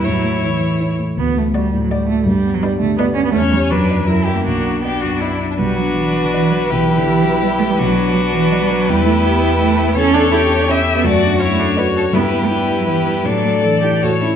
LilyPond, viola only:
\new Staff \with { instrumentName = "Viola" } { \time 3/4 \key g \lydian \tempo 4 = 165 e'2~ e'8 r8 | r4 fis'4 fis'4 | r4 d'4 d'4 | \key b \minor cis'4 d'4 e'4 |
d'4 d'4. r8 | d'2. | e'2. | d'2. |
e'2. | \key a \mixolydian a'4 g'2 | fis'4 e'8 d'8 fis'4 | e'4 e'2 |
d'4 a'8 g'8 fis'8 e'8 | }